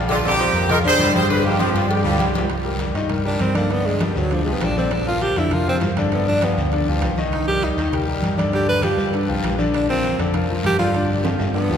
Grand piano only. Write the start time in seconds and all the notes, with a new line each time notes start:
Already playing: F3 F4 F5
0.26 C4 D5 D6
0.55 A#3 A#4 A#5
0.70 F3 F4 F5
0.85 D3 D4 D5
1.15 G3 G4 G5
1.29 D3 D4 D5
1.45 F3 F4 F5
1.75 G3 G4 G5
2.05 F3 F4 F5
2.20 G3 G4 G5
2.35 G3 G4 G5
2.65 G3 G4 A#4
2.95 D#3 D#4 D#5
3.09 G3 G4 A#4
3.25 G3 G4 A#4
3.55 D3 D4 D5
3.70 D3 D4 D5
4.01 F3 F4 G4
4.31 D3 D4 D5
4.46 F3 F4 G4
4.77 D3 D4 D5
5.07 F3 F4 A#4
5.37 D3 D4 D5
5.52 F3 F4 A#4
5.68 F3 F4 A#4
5.98 D3 D4 D5
6.13 D3 D4 D5
6.43 F3 F4 G4
6.73 D3 D4 D5
6.88 F3 F4 G4
7.18 D#3 D#4 D#5
7.48 G3 G4 A#4
7.78 D#3 D#4 D#5
7.93 G3 G4 A#4
8.07 G3 G4 A#4
8.38 D3 D4 D5
8.53 D3 D4 D5
8.84 F3 F4 G4
9.13 D3 D4 D5
9.29 F3 F4 G4
9.59 D3 D4 D5
9.89 F3 F4 A#4
10.19 D3 D4 D5
10.35 F3 F4 A#4
10.50 F3 F4 A#4
10.79 D3 D4 D5
10.95 D3 D4 D5
11.25 F3 F4 G4
11.55 D3 D4 D5
11.71 F3 F4 G4